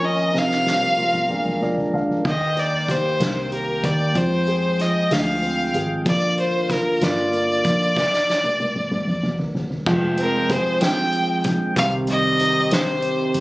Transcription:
0.00 0.30 A#2 medium
0.00 0.36 F3 soft
0.00 1.25 F3 soft
0.00 0.02 C#4 soft
0.00 0.32 C#4 soft
0.00 0.33 C#4 soft
0.00 0.31 F4 soft
0.00 2.21 A#4 medium
0.05 0.39 D#5 medium
0.34 1.27 C3 medium
0.34 1.29 C4 soft
0.34 1.63 F5 medium
0.34 snare soft
0.51 snare soft
0.66 1.28 G3 soft
0.66 snare soft
0.81 high tom soft
0.98 1.29 F4 soft
0.98 high tom medium
1.13 mid tom soft
1.29 2.22 A#2 medium
1.29 2.24 G#3 soft
1.29 2.24 D4 soft
1.29 mid tom medium
1.45 mid tom medium
1.61 2.23 F3 soft
1.61 1.92 D5 soft
1.61 mid tom medium
1.77 floor tom medium
1.93 2.24 D4 soft
1.93 2.23 F5 soft
1.93 floor tom medium
2.09 floor tom medium
2.25 3.16 D#2 medium
2.25 4.13 D#3 soft
2.25 4.12 D#3 medium
2.25 4.14 A#3 soft
2.25 2.61 D#5 medium
2.25 6.02 G5 medium
2.25 kick medium
2.25 crash medium
2.57 3.19 D#4 soft
2.57 2.92 D5 medium
2.57 closed hi-hat soft
2.88 3.50 G4 soft
2.88 3.53 C5 medium
2.88 kick medium
2.88 closed hi-hat medium
3.20 3.80 C2 medium
3.20 3.82 D#4 soft
3.20 snare medium
3.20 closed hi-hat medium
3.51 4.13 G4 soft
3.51 3.86 A#4 medium
3.51 closed hi-hat soft
3.83 4.14 D#2 medium
3.83 4.14 D#4 soft
3.83 4.18 D5 medium
3.83 kick medium
3.83 closed hi-hat medium
4.14 5.07 F2 medium
4.14 6.03 F3 medium
4.14 4.77 F3 medium
4.14 6.04 G#3 soft
4.14 4.82 C5 medium
4.14 kick medium
4.14 closed hi-hat medium
4.47 5.09 G#4 soft
4.47 closed hi-hat soft
4.79 6.02 F3 soft
4.79 5.14 D#5 medium
4.79 snare soft
4.79 closed hi-hat medium
5.11 5.71 D2 medium
5.11 5.73 G#4 soft
5.11 5.83 F5 medium
5.11 snare loud
5.11 closed hi-hat medium
5.42 6.04 C4 soft
5.42 closed hi-hat soft
5.74 6.04 G#1 medium
5.74 6.05 G#4 soft
5.74 closed hi-hat medium
6.05 6.97 A#1 medium
6.05 7.94 D3 medium
6.05 7.94 A#3 soft
6.05 6.67 A#3 medium
6.05 7.94 F4 medium
6.05 6.37 D5 medium
6.05 kick medium
6.05 closed hi-hat medium
6.38 7.00 F4 soft
6.38 6.73 C5 medium
6.38 closed hi-hat soft
6.69 7.31 A#3 medium
6.69 7.05 A#4 medium
6.69 kick medium
6.69 snare soft
6.69 closed hi-hat medium
7.01 7.61 G1 medium
7.01 7.63 F4 medium
7.01 9.24 D5 medium
7.01 snare medium
7.01 closed hi-hat medium
7.33 7.94 A#3 medium
7.33 closed hi-hat soft
7.65 7.95 A#1 medium
7.65 7.95 F4 soft
7.65 kick medium
7.65 closed hi-hat medium
7.97 kick medium
7.97 snare soft
7.97 crash medium
8.14 snare soft
8.29 snare medium
8.44 high tom medium
8.60 high tom medium
8.75 mid tom medium
8.91 mid tom medium
9.07 mid tom medium
9.23 mid tom medium
9.39 floor tom medium
9.55 floor tom medium
9.70 floor tom medium
9.86 11.41 F1 medium
9.86 11.75 F3 medium
9.86 11.73 F3 medium
9.86 11.75 G#3 medium
9.86 11.75 G5 medium
9.86 kick loud
9.86 crash medium
10.17 10.80 C4 medium
10.17 10.53 A#4 medium
10.17 closed hi-hat medium
10.50 11.73 G#4 medium
10.50 10.82 C5 medium
10.50 kick medium
10.50 snare soft
10.50 closed hi-hat medium
10.81 11.73 C4 medium
10.81 11.41 G5 medium
10.81 snare loud
10.81 closed hi-hat medium
11.12 closed hi-hat medium
11.44 11.74 A#1 medium
11.44 kick medium
11.44 closed hi-hat medium
11.76 13.31 C2 loud
11.76 13.40 C3 medium
11.76 13.40 D#3 medium
11.76 13.40 C4 medium
11.76 13.40 G4 medium
11.76 11.92 F5 loud
11.76 kick medium
11.76 closed hi-hat loud
12.07 13.31 G3 medium
12.07 12.75 D#5 loud
12.07 closed hi-hat medium
12.40 13.40 D#4 medium
12.40 closed hi-hat medium
12.71 13.40 G4 medium
12.71 13.40 C5 medium
12.71 snare loud
12.71 closed hi-hat loud
13.02 closed hi-hat medium
13.34 13.40 G1 medium
13.34 closed hi-hat medium

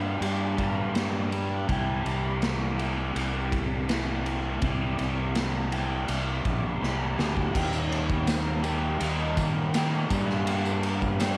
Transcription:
0.00 0.17 G2 medium
0.00 0.55 G2 medium
0.00 0.56 D3 medium
0.00 0.59 G3 medium
0.00 0.56 A#3 medium
0.00 0.58 D4 medium
0.00 0.57 G4 medium
0.21 1.64 G2 medium
0.21 ride medium
0.57 1.31 D3 medium
0.57 1.69 G3 medium
0.57 1.30 A#3 medium
0.57 1.70 D4 medium
0.57 1.72 G4 medium
0.57 kick medium
0.57 ride medium
0.61 1.31 G2 medium
0.95 snare medium
0.95 ride medium
1.32 ride medium
1.68 2.02 C2 medium
1.68 2.82 C3 medium
1.68 2.80 E3 medium
1.68 2.80 G3 loud
1.68 2.79 E4 loud
1.68 kick medium
1.68 ride medium
1.72 2.78 G4 medium
2.05 3.12 C2 medium
2.05 ride medium
2.42 snare loud
2.42 ride medium
2.78 3.88 E3 medium
2.78 3.90 G3 medium
2.78 3.87 E4 medium
2.78 3.92 G4 medium
2.78 ride medium
2.82 3.87 C3 medium
3.16 4.58 C2 medium
3.16 ride medium
3.52 kick medium
3.52 ride medium
3.88 4.60 C3 medium
3.88 4.60 E3 medium
3.88 4.65 G3 medium
3.88 4.61 E4 medium
3.88 4.66 G4 medium
3.88 snare loud
3.88 ride medium
4.26 ride medium
4.62 4.96 C2 medium
4.62 5.70 C3 medium
4.62 5.71 E3 medium
4.62 5.72 G3 medium
4.62 5.72 E4 medium
4.62 kick medium
4.62 ride medium
4.66 5.72 G4 medium
4.99 6.05 C2 medium
4.99 ride medium
5.35 snare medium
5.35 ride medium
5.72 6.81 E3 medium
5.72 6.81 G3 medium
5.72 6.81 E4 medium
5.72 6.80 G4 medium
5.72 ride medium
5.76 6.80 C3 medium
6.08 6.43 C2 medium
6.08 ride medium
6.45 6.78 A#1 medium
6.45 kick medium
6.45 ride medium
6.81 7.15 C2 medium
6.81 7.53 C3 medium
6.81 7.53 E3 medium
6.81 7.53 G3 medium
6.81 7.54 E4 medium
6.81 7.55 G4 medium
6.81 snare soft
7.18 7.52 D2 medium
7.18 snare medium
7.37 kick medium
7.53 8.98 D#2 medium
7.53 8.62 D#3 medium
7.53 8.66 G3 medium
7.53 8.65 A#3 medium
7.53 8.63 D#4 medium
7.53 8.63 G4 loud
7.53 kick loud
7.53 crash medium
7.53 tambourine soft
7.73 tambourine medium
7.92 ride medium
8.10 kick medium
8.10 tambourine soft
8.27 snare loud
8.27 ride medium
8.27 tambourine loud
8.63 9.72 D#3 medium
8.63 9.74 G3 medium
8.63 9.73 A#3 medium
8.63 9.72 D#4 medium
8.63 9.77 G4 medium
8.63 ride medium
8.63 tambourine medium
9.00 9.35 D#2 medium
9.00 ride medium
9.19 tambourine soft
9.37 10.07 D#3 medium
9.37 kick medium
9.37 ride medium
9.37 tambourine medium
9.73 10.08 D#3 medium
9.73 10.11 G3 medium
9.73 10.09 A#3 medium
9.73 10.10 D#4 medium
9.73 10.13 G4 medium
9.73 snare medium
9.73 ride medium
9.73 tambourine loud
9.93 tambourine soft
10.09 11.18 G2 medium
10.09 11.37 G2 medium
10.09 11.18 D3 loud
10.09 11.20 G3 medium
10.09 11.19 A#3 loud
10.09 11.21 D4 medium
10.09 kick loud
10.09 ride medium
10.09 tambourine medium
10.13 11.22 G4 loud
10.30 snare soft
10.47 ride medium
10.47 tambourine soft
10.65 tambourine medium
10.83 ride medium
11.01 kick medium
11.01 tambourine soft
11.19 11.37 G2 medium
11.19 11.37 D3 medium
11.19 11.37 G3 medium
11.19 11.37 A#3 medium
11.19 11.37 D4 medium
11.19 11.37 G4 medium
11.19 snare medium
11.19 ride medium
11.19 tambourine medium

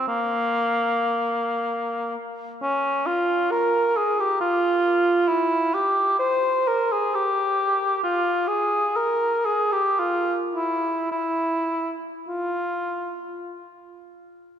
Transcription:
0.07 2.14 A#3 medium
2.62 3.08 C#4 medium
3.06 3.53 F4 medium
3.51 3.98 A#4 medium
3.97 4.21 G#4 medium
4.20 4.40 G4 medium
4.41 5.30 F4 medium
5.28 5.75 E4 medium
5.74 6.18 G4 medium
6.19 6.69 C5 medium
6.67 6.93 A#4 medium
6.92 7.16 G#4 medium
7.15 8.02 G4 medium
8.03 8.49 F4 medium
8.48 8.97 G#4 medium
8.96 9.47 A#4 soft
9.45 9.74 G#4 medium
9.72 10.01 G4 soft
9.99 10.38 F4 soft
10.54 11.10 E4 soft
11.12 11.91 E4 soft
12.28 13.38 F4 soft

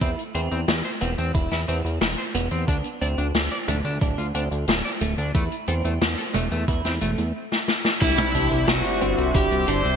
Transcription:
0.01 0.16 E2 loud
0.01 0.10 C4 medium
0.01 0.21 E4 medium
0.01 kick loud
0.01 closed hi-hat medium
0.19 closed hi-hat medium
0.35 0.49 E2 medium
0.35 0.55 C4 loud
0.35 0.40 C5 medium
0.35 closed hi-hat medium
0.51 0.66 E2 medium
0.51 0.60 C4 medium
0.51 closed hi-hat medium
0.68 0.82 E2 loud
0.68 snare loud
0.68 closed hi-hat medium
0.85 0.90 C5 medium
0.85 closed hi-hat medium
1.01 1.16 E1 medium
1.01 1.13 B3 medium
1.01 1.10 C4 medium
1.01 closed hi-hat loud
1.18 1.32 E2 medium
1.18 1.31 C4 loud
1.18 closed hi-hat medium
1.35 1.49 E1 loud
1.35 1.55 E4 medium
1.35 kick loud
1.35 closed hi-hat medium
1.51 1.66 E2 medium
1.51 1.60 E4 medium
1.51 snare soft
1.51 closed hi-hat soft
1.68 1.82 E2 medium
1.68 1.80 C4 medium
1.68 1.77 C4 medium
1.68 closed hi-hat medium
1.85 1.99 E2 medium
1.85 closed hi-hat medium
2.01 2.16 E1 loud
2.01 2.07 E4 medium
2.01 snare loud
2.01 closed hi-hat medium
2.18 2.23 C5 medium
2.18 closed hi-hat soft
2.35 2.49 E1 medium
2.35 2.47 B3 medium
2.35 closed hi-hat loud
2.51 2.66 E2 medium
2.51 2.64 C4 loud
2.51 closed hi-hat medium
2.68 2.82 D2 medium
2.68 2.88 D4 medium
2.68 2.76 D4 medium
2.68 kick loud
2.68 closed hi-hat medium
2.84 closed hi-hat medium
3.01 3.16 D2 medium
3.01 3.21 C4 loud
3.01 3.07 D5 medium
3.01 closed hi-hat medium
3.18 3.32 D2 medium
3.18 3.26 D4 medium
3.18 closed hi-hat medium
3.34 3.49 D2 loud
3.34 snare loud
3.34 closed hi-hat medium
3.51 3.57 D5 medium
3.51 closed hi-hat medium
3.68 3.82 D1 medium
3.68 3.80 A3 loud
3.68 3.76 D4 medium
3.68 closed hi-hat medium
3.68 mid tom medium
3.85 3.99 D2 medium
3.85 3.97 D4 medium
3.85 closed hi-hat soft
4.01 4.16 D1 loud
4.01 4.21 D4 medium
4.01 kick loud
4.01 closed hi-hat medium
4.18 4.32 D2 medium
4.18 4.27 F4 medium
4.18 closed hi-hat medium
4.35 4.49 D2 medium
4.35 4.47 C4 medium
4.35 4.43 D4 medium
4.35 closed hi-hat medium
4.51 4.66 D2 medium
4.51 closed hi-hat soft
4.68 4.82 D1 loud
4.68 4.73 F4 medium
4.68 snare loud
4.68 closed hi-hat medium
4.85 4.90 D5 medium
4.85 closed hi-hat medium
5.01 5.16 D1 medium
5.01 5.13 A3 loud
5.01 closed hi-hat medium
5.18 5.32 D2 medium
5.18 5.31 D4 loud
5.18 closed hi-hat medium
5.35 5.49 E2 medium
5.35 5.43 A3 medium
5.35 5.54 E4 medium
5.35 kick loud
5.35 closed hi-hat medium
5.52 closed hi-hat medium
5.68 5.82 E2 medium
5.68 5.88 C4 loud
5.68 5.73 A4 medium
5.68 closed hi-hat loud
5.85 5.99 E2 medium
5.85 5.93 A3 medium
5.85 closed hi-hat medium
6.01 6.16 E2 loud
6.01 snare loud
6.01 closed hi-hat medium
6.18 6.23 A4 medium
6.18 closed hi-hat medium
6.34 6.49 E1 medium
6.34 6.47 A3 loud
6.34 6.43 A3 medium
6.34 closed hi-hat loud
6.34 mid tom medium
6.51 6.66 E2 medium
6.51 6.64 A3 loud
6.51 closed hi-hat medium
6.68 6.82 E2 loud
6.68 6.88 E4 medium
6.68 kick loud
6.68 closed hi-hat medium
6.85 6.99 E2 medium
6.85 6.93 C4 medium
6.85 snare soft
6.85 closed hi-hat medium
7.01 7.16 E1 medium
7.01 7.21 A3 medium
7.01 7.10 A3 medium
7.01 closed hi-hat loud
7.18 7.32 E2 medium
7.18 closed hi-hat medium
7.52 snare medium
7.68 snare medium
7.85 snare medium
8.01 8.16 C2 loud
8.01 8.98 G3 medium
8.01 8.98 C4 medium
8.01 8.98 D4 medium
8.01 8.68 E4 medium
8.01 8.21 E4 medium
8.01 8.98 E4 medium
8.01 8.68 E4 loud
8.01 8.98 G4 loud
8.01 9.96 C5 medium
8.01 9.96 D5 medium
8.01 9.96 E5 medium
8.01 9.96 D6 medium
8.01 kick loud
8.01 closed hi-hat medium
8.01 crash loud
8.01 sub drop medium
8.17 closed hi-hat medium
8.17 mid tom loud
8.35 8.49 C2 medium
8.35 8.55 D4 loud
8.35 closed hi-hat loud
8.52 8.66 C2 medium
8.52 closed hi-hat medium
8.67 8.82 C2 loud
8.67 9.35 F#4 medium
8.67 9.34 F#4 loud
8.67 snare loud
8.67 closed hi-hat medium
8.85 closed hi-hat medium
9.01 9.16 G1 medium
9.01 9.64 G3 loud
9.01 9.13 C4 loud
9.01 9.64 C4 medium
9.01 9.64 D4 medium
9.01 9.64 E4 medium
9.01 closed hi-hat loud
9.18 9.32 C2 medium
9.18 closed hi-hat medium
9.35 9.49 G1 loud
9.35 9.55 E4 medium
9.35 9.69 G4 loud
9.35 9.68 G4 loud
9.35 kick loud
9.35 closed hi-hat medium
9.51 9.66 C2 medium
9.51 closed hi-hat medium
9.68 9.82 G1 loud
9.68 9.96 G3 medium
9.68 9.96 C4 medium
9.68 9.80 D4 medium
9.68 9.96 D4 medium
9.68 9.96 E4 medium
9.68 9.96 G4 loud
9.68 9.96 C5 loud
9.68 closed hi-hat loud
9.85 9.96 C2 medium
9.85 closed hi-hat medium

